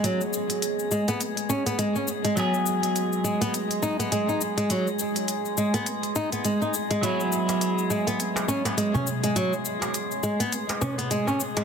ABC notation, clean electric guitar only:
X:1
M:4/4
L:1/8
Q:"Swing 16ths" 1/4=103
K:F#mix
V:1 name="Clean electric guitar"
[F,B,EG]8 | [F,B,G]8- | [F,B,G]8 | [F,B,EG]8- |
[F,B,EG]8 |]